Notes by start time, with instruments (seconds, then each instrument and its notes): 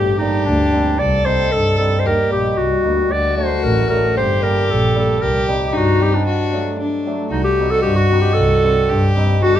Already playing: double bass G1, clarinet G4, violin G4
0.18 hammered dulcimer G3 A#3 D4, clarinet D#4
0.45 double bass D2, clarinet D4
0.73 hammered dulcimer G3 A#3 C4
0.99 double bass C2, violin A4, clarinet D5
1.25 hammered dulcimer G3 C4 D#4, clarinet C5
1.52 double bass G2, clarinet A4
1.78 hammered dulcimer G3 C4 D#4, clarinet A4
1.99 clarinet C5
2.05 double bass D#2, violin G4, clarinet A#4
2.30 double bass A#1, hammered dulcimer G3 A#3 D#4, clarinet G4
2.57 double bass C2, clarinet F#4
2.83 double bass D2, hammered dulcimer G3 A#3 D#4
3.11 double bass D2, violin F#4, clarinet D5
3.36 hammered dulcimer F#3 A3 D4, clarinet C5
3.63 double bass A1, clarinet A#4
3.89 hammered dulcimer F#3 A3 D4, clarinet A#4
4.16 double bass G1, violin G4, clarinet C5
4.42 hammered dulcimer G3 A#3 D4, clarinet A#4
4.68 double bass A#1, clarinet A4
4.95 hammered dulcimer G3 A#3 D4, clarinet A4
5.21 double bass C2, violin G4, clarinet A#4
5.48 hammered dulcimer G3 C4 D#4
5.67 clarinet G4
5.73 double bass G2, violin D#4, clarinet F#4
6.01 hammered dulcimer G3 C4 D#4, clarinet G4
6.15 clarinet D4
6.27 violin F#4
6.53 hammered dulcimer F#3 A3 D4
6.79 violin D4
7.07 hammered dulcimer F#3 A3 D4
7.31 double bass C2, clarinet D#4, violin F#4
7.44 clarinet G4
7.59 hammered dulcimer G3 C4 D#4
7.71 clarinet A4
7.82 double bass G2, clarinet G4
7.96 clarinet F#4
8.11 hammered dulcimer G3 C4 D#4
8.21 clarinet G4
8.34 double bass C2, clarinet A4
8.64 hammered dulcimer G3 C4 D4
8.88 double bass G2, violin G4
9.16 hammered dulcimer G3 C4 D#4
9.41 double bass G1, clarinet F#4, violin A4
9.55 clarinet G4